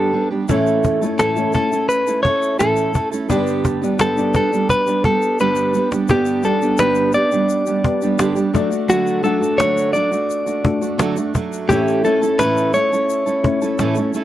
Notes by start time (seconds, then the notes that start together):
Already playing: G2 D3 G3 B3 D4 G4 A4
0.13 G3 B3 D4 G4
0.31 G3 B3 D4 G4, cajon slap
0.48 A2 E3 A3 C#4 E4 A4 C#5, cajon bass, shaker
0.67 cajon slap, shaker
0.84 cajon bass, shaker
1.01 A3 C#4 E4 A4 C#5, shaker
1.19 A2 E3 A3 C#4 E4 A4, cajon slap, shaker
1.36 A3 C#4 E4 C#5, cajon slap, shaker
1.53 A3 C#4 E4 A4, cajon bass, shaker
1.72 A3 C#4 E4 A4, shaker
1.89 B4, cajon slap, shaker
2.07 A3 C#4 E4 A4, cajon slap, shaker
2.23 A3 C#4 E4 C#5, cajon bass
2.27 A4
2.42 shaker
2.59 A2 E3 A3 C#4 E4 A4, cajon slap, shaker
2.76 cajon slap, shaker
2.94 A3 C#4 E4 A4, cajon bass, shaker
3.12 A3 C#4 E4 A4, cajon slap, shaker
3.29 G2 D3 G3 B3 D4 G4 D5, cajon bass, shaker
3.47 shaker
3.65 cajon bass, shaker
3.81 G3 B3 D4 G4 D5, shaker
3.99 G2 D3 G3 B3 D4 G4 A4, cajon slap, shaker
4.17 B3 D4 G4 D5, cajon slap, shaker
4.33 G3 B3 D4 G4 A4, cajon bass, shaker
4.51 G3 B3 D4 G4, cajon slap, shaker
4.69 B4, cajon bass, shaker
4.86 G3 B3 D4 G4, cajon slap, shaker
5.04 G3 B3 D4 G4 A4, cajon bass
5.22 shaker
5.39 G2 D3 G3 B3 D4 G4 B4, cajon slap, shaker
5.55 cajon slap, shaker
5.74 G3 B3 D4 G4, shaker
5.91 G3 B3 D4 G4, cajon slap, shaker
6.08 G2 D3 G3 B3 D4 G4 D5, cajon bass, shaker
6.26 shaker
6.43 G3 B3 D4 G4 A4 D5, shaker
6.62 G3 B3 D4 G4, cajon slap, shaker
6.78 G2 D3 G3 B3 D4 G4 B4, cajon slap, shaker
6.95 shaker
7.13 G3 B3 D4 G4 D5, cajon slap, shaker
7.32 G3 B3 D4 G4, cajon slap, shaker
7.49 cajon slap, shaker
7.66 G3 B3 D4 G4, shaker
7.84 B3 D4 G4 D5, cajon bass
8.02 G3 B3 D4 G4, shaker
8.19 G2 D3 G3 B3 D4 G4, cajon slap, shaker
8.35 G3 B3 D4 G4, shaker
8.53 F#3 A3 D4 F#4 D5, cajon bass, shaker
8.70 A3 D4 F#4, cajon slap, shaker
8.88 D3 F#3 A3 D4 F#4, shaker
9.07 shaker
9.22 F#3 A3 D4 F#4 A4 F#5, cajon slap, shaker
9.41 A3 D4 F#4, cajon slap, shaker
9.58 D3 F#3 A3 D4 F#4 C#5, cajon slap, shaker
9.77 shaker
9.93 F#3 A3 D4 F#4 D5, cajon slap, shaker
10.12 A3 D4 F#4, cajon slap, shaker
10.30 cajon slap, shaker
10.46 A3 D4 F#4, shaker
10.64 A3 D4 F#4 A4, cajon bass
10.81 A3 D4 F#4, shaker
10.98 D3 F#3 A3 D4 F#4, cajon slap, shaker
11.16 A3 D4 F#4, shaker
11.34 F#3 A3 D4 F#4, cajon bass, shaker
11.53 shaker
11.68 A2 E3 A3 C#4 E4 G4 A4 C#5, cajon bass, shaker
11.88 shaker
12.04 A3 C#4 E4 A4 C#5, cajon slap, shaker
12.21 A3 C#4 E4 A4, cajon slap, shaker
12.39 A2 E3 A3 C#4 E4 A4 B4, cajon slap, shaker
12.57 shaker
12.74 A3 C#4 E4 A4 C#5, cajon slap, shaker
12.91 A3 C#4 E4 A4, cajon slap, shaker
13.10 cajon slap, shaker
13.26 A3 C#4 E4 A4, shaker
13.43 A3 C#4 E4 C#5, cajon bass
13.62 A3 C#4 E4 A4, shaker
13.79 A2 E3 A3 C#4 E4 A4, cajon slap, shaker
13.95 C#4 E4 A4, shaker
13.99 A3
14.14 A3 C#4 E4 A4, cajon slap, shaker